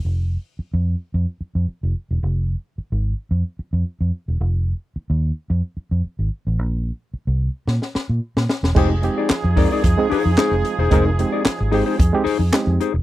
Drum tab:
CC |----------------|----------------|----------------|----------------|
HH |----------------|----------------|----------------|----------------|
CP |----------------|----------------|----------------|----------------|
SD |----------------|----------------|----------------|--------ooo--ooo|
BD |----------------|----------------|----------------|----------------|

CC |x---------------|----------------|
HH |--x-x-o-x-o-x-x-|x-x-x-o-x-o-x-x-|
CP |----x-------x---|----x-------x---|
SD |----o-------o---|----o-------o---|
BD |o-----o-o-------|o-------o-------|